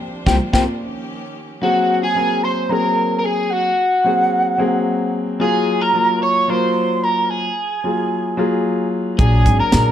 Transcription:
Already playing: C3 F3 A#3 D4 C5
0.26 C2 A#3 C4 F4 G4 A#4 C5 G5, kick, snare
0.53 C2 A#3 C4 F4 G4 A#4 C5 G5, kick, snare
0.79 D#3 C#4 G4
1.62 F#3 A#3 C4 F#4 G#4 F#5
2.03 G#4 G#5
2.15 F#3 A#3 C4 A#4
2.44 C5 C6
2.69 F#3 A#3 C4 G#4 A#4 A#5
3.17 A#4 A#5
3.24 G#4 G#5
3.50 F#4 F#5
4.04 F#3 A#3 C4 G#4
4.58 F#3 A#3 C4 G#4
5.40 F#3 A#3 F4 G#4 G#5
5.81 A#4 A#5
5.94 F#3 A#3 F4 A#4
6.22 C#5 C#6
6.48 F#3 A#3 F4 A#4 C5 C6
7.03 A#4 A#5
7.30 G#4 G#5
7.84 F#3 A#3 F4 G#4
8.37 F#3 A#3 F4 G#4
9.18 A#1 F#3 A#3 D4 G#4 G#5, kick, closed hi-hat
9.46 G#1, kick, closed hi-hat
9.60 A#4 A#5, muted upright bass stroke
9.71 A#2 F#3 A#3 D4 G#4, snare, closed hi-hat

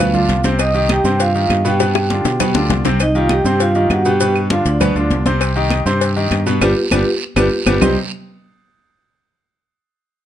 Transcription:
Already playing: D2 F4 F5
0.00 B2 B3 B4
0.14 D3 D4 F4, high conga, low conga, maracas
0.29 C2, cowbell, high conga, short guiro, maracas
0.44 C3 C4 C5, cowbell, high conga, short guiro, maracas
0.59 D#5 D#6, cowbell, high conga, long guiro, claves, maracas
0.74 D#3 D#4 G4, high conga, maracas
0.89 G4 G5, cowbell, high conga, short guiro, claves, maracas
1.04 G2 C3 C4 C5, high conga, short guiro, maracas
1.20 F4 F5, cowbell, high conga, long guiro, maracas
1.35 D#3 D#4 G4, high conga, maracas
1.49 G2, cowbell, high conga, short guiro, claves, maracas
1.65 B2 B3 G4 B4 G5, short guiro, maracas
1.80 B2 B3 B4, cowbell, high bongo, high conga, long guiro, maracas
1.95 high bongo, high conga, claves, maracas
2.10 D3 D4 F4, cowbell, high conga, short guiro, maracas
2.25 B2, cowbell, low bongo, short guiro, maracas
2.40 B2 B3 B4, cowbell, low bongo, high conga, low conga, long guiro, claves, maracas
2.54 D2 D3 D4 F4, low bongo, high conga, maracas
2.70 C2, cowbell, low bongo, high conga, short guiro, maracas
2.85 C3 C4 C5, cowbell, low bongo, low conga, short guiro, maracas
3.00 D#4 D#5, cowbell, high conga, claves, maracas
3.15 D#3 D#4 F4 G4 F5, high conga, maracas
3.29 G4 G5, cowbell, high conga, claves, maracas
3.44 G2 C3 C4 C5, high conga, maracas
3.60 F4 F5, cowbell, high conga, maracas
3.75 D#3 D#4 G4, high conga, maracas
3.90 G2 F#4 F#5, cowbell, high conga, claves, maracas
4.05 B2 B3 G4 B4 G5, maracas
4.20 B2 B3 B4, cowbell, high conga, maracas
4.36 high conga, claves, maracas
4.50 D3 D4 F4 F5, cowbell, high conga, maracas
4.65 D2 D4 D5, cowbell, maracas
4.80 B2 B3 B4, cowbell, high conga, low conga, claves, maracas
4.95 D2 D3 D4 F4, high conga, maracas
5.10 C2, cowbell, high conga, maracas
5.26 C3 C4 C5, cowbell, high conga, maracas
5.41 cowbell, high conga, long guiro, claves, maracas
5.56 D#3 D#4 G4, high conga, maracas
5.70 cowbell, high conga, short guiro, claves, maracas
5.86 G2 C3 C4 C5, high conga, short guiro, maracas
6.01 cowbell, high conga, long guiro, maracas
6.16 D#3 D#4 G4, high conga, maracas
6.31 G2, cowbell, high conga, short guiro, claves, maracas
6.46 B2 B3 B4, short guiro, maracas
6.61 G1 G3 B3 D4 F4 G4 B4, cowbell, high conga, long guiro, claves, maracas
6.91 G1 G3 B3 D4 F4 G4 B4, cowbell, high conga, long guiro, claves, maracas
7.36 G1 G3 B3 D4 F4 G4 B4, cowbell, high conga, long guiro, claves, maracas
7.66 G1 G3 B3 D4 F4 G4 B4, cowbell, high conga, long guiro, claves, maracas
7.81 C2 C3 G3 C4 D#4 G4 C5, low bongo, low conga, long guiro, claves, maracas

